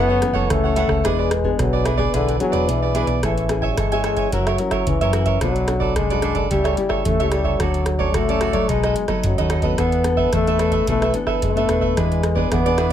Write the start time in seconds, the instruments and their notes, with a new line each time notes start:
Already playing: fingered electric bass F#1, nylon-string guitar F#2 E3 A3 C#4, trombone B3
0.09 cavaquinho A4 C#5 F#5
0.21 nylon-string guitar E3 A3 C#4, muted cavaquinho stroke, cross-stick, closed hi-hat
0.33 fingered electric bass F#1, nylon-string guitar E3 A3 C#4, cavaquinho A4 C#5 F#5, kick
0.50 fingered electric bass C#2, nylon-string guitar C#3, trombone A3, kick, cross-stick, closed hi-hat
0.64 cavaquinho A4 C#5 F#5
0.76 nylon-string guitar E3 A3 C#4, cavaquinho E4 A4 C#5 F#5, closed hi-hat
0.87 fingered electric bass C#2, cavaquinho A4 C#5 F#5, kick, cross-stick
1.04 fingered electric bass E1, nylon-string guitar E3 B3 D4 G#4, trombone G#3, cavaquinho E4 G#4 B4 D5, kick, cross-stick, closed hi-hat
1.19 cavaquinho G#4 B4 D5
1.30 muted cavaquinho stroke, cross-stick, closed hi-hat
1.44 nylon-string guitar B3 D4 G#4, kick
1.59 fingered electric bass B1, nylon-string guitar B2, trombone F#3, kick, cross-stick, closed hi-hat
1.73 cavaquinho G#4 B4 D5
1.85 cavaquinho E4 G#4 B4 D5, cross-stick, closed hi-hat
1.97 nylon-string guitar B3 D4 G#4, cavaquinho G#4 B4 D5, kick
2.13 fingered electric bass B1, trombone D3, nylon-string guitar E3, cavaquinho E4 G#4 B4 D5, closed hi-hat
2.28 cavaquinho G#4 B4 D5, closed hi-hat
2.40 trombone F#3, nylon-string guitar B3 D4 G#4, muted cavaquinho stroke, closed hi-hat
2.52 fingered electric bass E1, cavaquinho G#4 B4 D5, closed hi-hat
2.68 fingered electric bass B1, nylon-string guitar B2, trombone E3, closed hi-hat
2.82 cavaquinho G#4 B4 D5
2.94 nylon-string guitar B3 D4 G#4, cavaquinho E4 G#4 B4 D5, closed hi-hat
3.07 fingered electric bass B1, cavaquinho G#4 B4 D5, closed hi-hat
3.23 fingered electric bass A1, trombone E3, nylon-string guitar A3 C#4 E4 G#4, cavaquinho A4 C#5 E5 G#5, kick, cross-stick, closed hi-hat
3.38 closed hi-hat
3.49 nylon-string guitar C#4 E4 G#4, muted cavaquinho stroke, cross-stick, closed hi-hat
3.62 cavaquinho C#5 E5 G#5, kick
3.71 trombone G3
3.77 fingered electric bass G1, nylon-string guitar E3, trombone G#3, cavaquinho A4 C#5 E5 G#5, kick, cross-stick, closed hi-hat
3.92 nylon-string guitar C#4 E4 G#4, cavaquinho C#5 E5 G#5, closed hi-hat
4.04 cavaquinho A4 C#5 E5 G#5, cross-stick, closed hi-hat
4.17 cavaquinho C#5 E5 G#5, kick, closed hi-hat
4.32 fingered electric bass F#1, trombone F#3, nylon-string guitar F#3 C#4 E4 A#4, cavaquinho F#4 A#4 C#5 E5, kick, closed hi-hat
4.47 cavaquinho A#4 C#5 E5, cross-stick, closed hi-hat
4.58 nylon-string guitar C#4 E4 A#4, muted cavaquinho stroke, closed hi-hat
4.71 cavaquinho A#4 C#5 E5, kick, cross-stick, closed hi-hat
4.87 fingered electric bass C#2, nylon-string guitar C#3, trombone E3, kick, closed hi-hat
5.01 fingered electric bass F#2, nylon-string guitar C#4 E4 A#4, cavaquinho A#4 C#5 E5, closed hi-hat
5.13 cavaquinho F#4 A#4 C#5 E5, cross-stick, closed hi-hat
5.25 cavaquinho A#4 C#5 E5, kick, closed hi-hat
5.41 fingered electric bass B1, nylon-string guitar B2 A3 D4 F#4, trombone F#3, cavaquinho D4 A4 B4 D5, kick, cross-stick, closed hi-hat
5.56 closed hi-hat
5.68 nylon-string guitar A3 D4 F#4, cross-stick, closed hi-hat
5.80 cavaquinho A4 B4 D5, kick
5.96 fingered electric bass C2, nylon-string guitar F#2, trombone G#3, cavaquinho D4 A4 B4 D5, kick, cross-stick, closed hi-hat
6.10 nylon-string guitar D4 F#4, cavaquinho A4 B4 D5, closed hi-hat
6.22 cavaquinho D4 A4 B4 D5, cross-stick, closed hi-hat
6.35 cavaquinho A4 B4 D5, kick, closed hi-hat
6.50 fingered electric bass C#2, nylon-string guitar C#3 A3 E4 G4, trombone G3, cavaquinho G4 A4 C#5 E5, kick, closed hi-hat
6.64 cavaquinho A4 C#5 E5, cross-stick, closed hi-hat
6.77 nylon-string guitar A3 E4 G4, muted cavaquinho stroke, closed hi-hat
6.89 cavaquinho A4 C#5 E5, kick, cross-stick
7.05 fingered electric bass E2, nylon-string guitar C#3, trombone A3, kick, closed hi-hat
7.20 fingered electric bass C#2, nylon-string guitar A3 E4 G4, cavaquinho A4 C#5 E5, closed hi-hat
7.31 trombone G3, cavaquinho G4 A4 C#5 E5, cross-stick, closed hi-hat
7.44 cavaquinho A4 C#5 E5, kick
7.59 fingered electric bass D2, nylon-string guitar D3 F#3 A3 C#4, trombone F#3, cavaquinho F#4 A4 C#5 D5, kick, cross-stick, closed hi-hat
7.74 closed hi-hat
7.86 muted cavaquinho stroke, cross-stick, closed hi-hat
7.99 nylon-string guitar F#3 A3 C#4, cavaquinho A4 C#5 D5, kick
8.14 fingered electric bass C#2, nylon-string guitar A2, trombone A3, cavaquinho F#4 A4 C#5 D5, kick, cross-stick, closed hi-hat
8.28 nylon-string guitar F#3 A3 C#4, cavaquinho A4 C#5 D5, closed hi-hat
8.41 cavaquinho F#4 A4 C#5 D5, cross-stick, closed hi-hat
8.53 nylon-string guitar F#3 D#4, cavaquinho A4 C#5 D5, kick, closed hi-hat
8.69 fingered electric bass B1, nylon-string guitar B2, trombone G#3, cavaquinho D#4 A4 B4 D#5, kick, closed hi-hat
8.83 cavaquinho A4 B4 D#5, cross-stick, closed hi-hat
8.96 muted cavaquinho stroke, closed hi-hat
9.08 nylon-string guitar F#3 A3 D#4, cavaquinho A4 B4 D#5, kick, cross-stick, closed hi-hat
9.24 fingered electric bass F#2, nylon-string guitar F#2, trombone F#3, kick, closed hi-hat
9.38 fingered electric bass D#2, nylon-string guitar F#3 A3 D#4, cavaquinho A4 B4 D#5, closed hi-hat
9.50 cavaquinho D#4 A4 B4 D#5, cross-stick, closed hi-hat
9.62 nylon-string guitar B3 D4 A4, cavaquinho A4 B4 D#5, kick, closed hi-hat
9.78 fingered electric bass E2, nylon-string guitar E3, trombone B3, cavaquinho D4 A4 B4 E5, kick, cross-stick, closed hi-hat
9.92 closed hi-hat
10.04 nylon-string guitar B3 D4 A4, muted cavaquinho stroke, cross-stick, closed hi-hat
10.17 cavaquinho A4 B4 E5, kick
10.33 fingered electric bass E2, nylon-string guitar B2, trombone A3, cavaquinho D4 A4 B4 E5, kick, cross-stick, closed hi-hat
10.47 nylon-string guitar B3 D4 A4, cavaquinho A4 B4 E5, closed hi-hat
10.59 cavaquinho D4 A4 B4 E5, cross-stick, closed hi-hat
10.72 cavaquinho A4 B4 E5, kick, closed hi-hat
10.87 fingered electric bass B1, nylon-string guitar E3 B3 D4 A4, trombone A3, cavaquinho D4 A4 B4 E5, kick, closed hi-hat
11.02 cavaquinho A4 B4 E5, cross-stick, closed hi-hat
11.14 nylon-string guitar B3 D4 A4, muted cavaquinho stroke, closed hi-hat
11.27 cavaquinho A4 B4 E5, kick, cross-stick
11.42 fingered electric bass F#1, nylon-string guitar B2, trombone A3, kick, closed hi-hat
11.56 nylon-string guitar B3 D4 A4, cavaquinho A4 B4 E5, closed hi-hat
11.69 fingered electric bass E1, cavaquinho D4 A4 B4 E5, cross-stick, closed hi-hat
11.81 cavaquinho A4 B4 E5, kick
11.96 fingered electric bass E2, nylon-string guitar E3 B3 D4 G#4, trombone G#3, cavaquinho E4 G#4 B4 D5, kick, cross-stick, closed hi-hat
12.12 closed hi-hat
12.23 muted cavaquinho stroke, cross-stick, closed hi-hat
12.35 nylon-string guitar B3 D4 G#4, cavaquinho G#4 B4 D5, kick
12.51 fingered electric bass E2, nylon-string guitar B2, trombone B3, cavaquinho E4 G#4 B4 D5, kick, cross-stick, closed hi-hat
12.66 nylon-string guitar B3 D4 G#4, cavaquinho G#4 B4 D5, closed hi-hat
12.77 cavaquinho E4 G#4 B4 D5, cross-stick, closed hi-hat